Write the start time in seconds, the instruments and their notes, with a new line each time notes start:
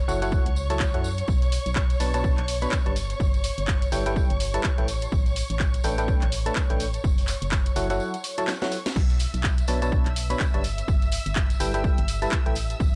Already playing: violin section C#5 C#6
0.08 fm bass F#1, fm electric piano F#3 E4 A4 C#5 F#5, tambourine
0.22 fm electric piano F#3 E4 A4 C#5 F#5, closed hi-hat, tambourine
0.32 kick, tambourine
0.46 fm bass C#2, closed hi-hat
0.56 tambourine
0.70 fm electric piano F#3 E4 A4 C#5 A5, closed hi-hat, tambourine
0.80 kick, clap, tambourine
0.94 fm bass F#2, fm electric piano F#3 E4 A4 C#5 F#5, closed hi-hat
1.04 tambourine
1.18 closed hi-hat, tambourine
1.28 fm bass B1, kick, tambourine
1.42 closed hi-hat, tambourine
1.52 open hi-hat, tambourine
1.66 fm bass B1, closed hi-hat, tambourine
1.76 kick, clap, tambourine
1.90 closed hi-hat, tambourine
2.00 fm bass B1, fm electric piano B2 D4 B4 C#5 A5, open hi-hat, tambourine
2.13 fm electric piano B2 D4 B4 C#5 A5, closed hi-hat, tambourine
2.24 kick, tambourine
2.38 fm bass B1, clap, closed hi-hat
2.48 open hi-hat, tambourine
2.61 fm electric piano B2 D4 B4 C#5 B5, closed hi-hat, tambourine
2.72 kick, clap, tambourine
2.86 fm bass G1, fm electric piano G3 D4 B4 C#5 A5, closed hi-hat
2.96 open hi-hat, tambourine
3.10 closed hi-hat, tambourine
3.20 fm bass G1, kick, tambourine
3.34 closed hi-hat, tambourine
3.44 open hi-hat, tambourine
3.57 fm bass G1, closed hi-hat, tambourine
3.68 kick, clap, tambourine
3.82 closed hi-hat, tambourine
3.92 fm bass G1, fm electric piano G3 E4 A4 B4 G5, open hi-hat, tambourine
4.06 fm electric piano G3 E4 A4 B4 G5, closed hi-hat, tambourine
4.16 kick, tambourine
4.30 fm bass G1, closed hi-hat
4.40 open hi-hat, tambourine
4.54 fm electric piano G3 E4 A4 B4 A5, closed hi-hat, tambourine
4.64 kick, clap, tambourine
4.78 fm bass A1, fm electric piano A3 E4 A4 B4 G5, closed hi-hat
4.88 open hi-hat, tambourine
5.01 closed hi-hat, tambourine
5.12 fm bass A1, kick, tambourine
5.26 closed hi-hat, tambourine
5.36 open hi-hat, tambourine
5.50 fm bass A1, closed hi-hat, tambourine
5.59 kick, clap, tambourine
5.74 closed hi-hat, tambourine
5.84 fm bass A1, fm electric piano A3 D4 A4 B4 G5, open hi-hat, tambourine
5.98 fm electric piano A3 D4 A4 B4 G5, closed hi-hat, tambourine
6.08 kick, tambourine
6.22 fm bass A1, clap, closed hi-hat
6.32 open hi-hat, tambourine
6.46 fm electric piano A3 D4 A4 B4 A5, closed hi-hat, tambourine
6.56 kick, clap, tambourine
6.70 fm bass A1, fm electric piano A3 D4 A4 B4 G5, closed hi-hat
6.80 open hi-hat, tambourine
6.93 closed hi-hat, tambourine
7.04 fm bass F#1, kick, tambourine
7.18 open hi-hat, tambourine
7.28 clap, open hi-hat, tambourine
7.42 fm bass F#1, closed hi-hat, tambourine
7.52 kick, clap, tambourine
7.66 closed hi-hat, tambourine
7.76 fm bass F#1, fm electric piano F#3 E4 A4 C#5 F#5, open hi-hat, tambourine
7.90 fm electric piano F#3 E4 A4 C#5 F#5, closed hi-hat, tambourine
8.00 tambourine
8.14 closed hi-hat, tambourine
8.24 open hi-hat, tambourine
8.38 fm electric piano F#3 E4 A4 C#5 A5, closed hi-hat, tambourine
8.48 snare, clap, tambourine
8.61 fm electric piano F#3 E4 A4 C#5 F#5, snare, closed hi-hat, tambourine
8.72 open hi-hat, tambourine
8.86 snare, closed hi-hat, tambourine
8.96 fm bass B1, violin section E5 E6, kick, crash, tambourine
9.10 closed hi-hat, tambourine
9.19 open hi-hat, tambourine
9.34 fm bass B1, closed hi-hat, tambourine
9.44 kick, clap, tambourine
9.58 closed hi-hat, tambourine
9.67 fm bass B1, fm electric piano B2 D4 B4 C#5 A5, open hi-hat, tambourine
9.82 fm electric piano B2 D4 B4 C#5 A5, closed hi-hat, tambourine
9.92 kick, tambourine
10.06 fm bass B1, clap, closed hi-hat
10.16 open hi-hat, tambourine
10.30 fm electric piano B2 D4 B4 C#5 B5, closed hi-hat, tambourine
10.40 kick, clap, tambourine
10.54 fm bass G1, fm electric piano G3 D4 B4 C#5 A5, closed hi-hat
10.64 open hi-hat, tambourine
10.78 closed hi-hat, tambourine
10.88 fm bass G1, kick, tambourine
11.02 closed hi-hat, tambourine
11.11 open hi-hat, tambourine
11.26 fm bass G1, closed hi-hat, tambourine
11.35 kick, clap, tambourine
11.50 closed hi-hat, tambourine
11.60 fm bass G1, fm electric piano G3 E4 A4 B4 G5, open hi-hat, tambourine
11.74 fm electric piano G3 E4 A4 B4 G5, closed hi-hat, tambourine
11.84 kick, tambourine
11.98 fm bass G1, closed hi-hat
12.08 open hi-hat, tambourine
12.22 fm electric piano G3 E4 A4 B4 A5, closed hi-hat, tambourine
12.32 kick, clap, tambourine
12.46 fm bass A1, fm electric piano A3 E4 A4 B4 G5, closed hi-hat
12.55 open hi-hat, tambourine
12.70 closed hi-hat, tambourine
12.80 fm bass A1, kick, tambourine